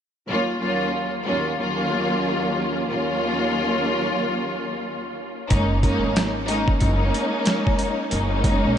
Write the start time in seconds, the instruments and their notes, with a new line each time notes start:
0.29 string section D#2 F#3 A#3 C#4 F4
0.60 string section D#2 F#3 A#3 C#4 F4
1.26 string section D#2 F#3 A#3 C#4 F4
1.59 string section D#2 F#3 A#3 C#4 F4
2.89 string section D#2 F#3 A#3 C#4 F4
5.50 upright bass F#1, string section G#3 A#3 C#4 D#4, kick, closed hi-hat
5.83 string section G#3 A#3 C#4 D#4, kick, closed hi-hat
6.04 upright bass G#1
6.16 cross-stick, snare, closed hi-hat
6.48 string section G#3 A#3 C#4 D#4, closed hi-hat
6.68 kick
6.80 upright bass F#1, string section G#3 A#3 C#4 D#4, kick, closed hi-hat
7.14 closed hi-hat
7.45 cross-stick, snare, closed hi-hat
7.67 kick
7.79 closed hi-hat
8.11 upright bass F#1, string section G#3 A#3 C#4 D#4, closed hi-hat
8.44 kick, closed hi-hat
8.65 upright bass A#1